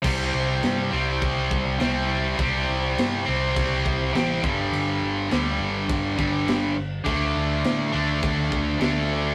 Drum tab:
CC |x-x-x-x-|x-x-x-x-|x-x-x-x-|x-x-x-x-|
SD |--o---o-|--o---o-|--o---o-|--o---o-|
BD |o---oo--|o---oo-o|----oo--|o---oo--|